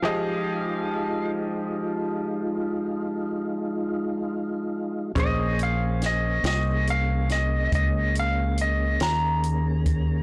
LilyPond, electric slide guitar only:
\new Staff \with { instrumentName = "Electric slide guitar" } { \time 12/8 \key f \minor \tempo 4. = 47 f''4. r1 r8 | ees''8 f''8 ees''8 ees''8 f''8 ees''8 ees''8 f''8 ees''8 bes''4. | }